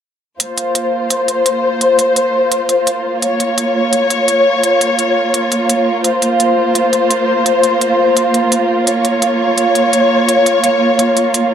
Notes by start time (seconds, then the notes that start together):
0.40 A#3 F4 C5, closed hi-hat
0.58 closed hi-hat
0.75 closed hi-hat
1.10 closed hi-hat
1.28 closed hi-hat
1.46 closed hi-hat
1.81 closed hi-hat
1.99 closed hi-hat
2.16 closed hi-hat
2.52 closed hi-hat
2.69 closed hi-hat
2.87 closed hi-hat
3.22 C#5, closed hi-hat
3.40 closed hi-hat
3.58 closed hi-hat
3.93 closed hi-hat
4.10 closed hi-hat
4.28 closed hi-hat
4.63 closed hi-hat
4.81 closed hi-hat
4.99 closed hi-hat
5.34 closed hi-hat
5.52 closed hi-hat
5.69 closed hi-hat
6.04 C5, closed hi-hat
6.22 closed hi-hat
6.40 closed hi-hat
6.75 closed hi-hat
6.93 closed hi-hat
7.11 closed hi-hat
7.46 closed hi-hat
7.63 closed hi-hat
7.81 closed hi-hat
8.17 closed hi-hat
8.34 closed hi-hat
8.52 closed hi-hat
8.87 C#5, closed hi-hat
9.05 closed hi-hat
9.22 closed hi-hat
9.58 closed hi-hat
9.75 closed hi-hat
9.93 closed hi-hat
10.29 closed hi-hat
10.46 closed hi-hat
10.64 closed hi-hat
10.99 closed hi-hat
11.17 closed hi-hat
11.34 closed hi-hat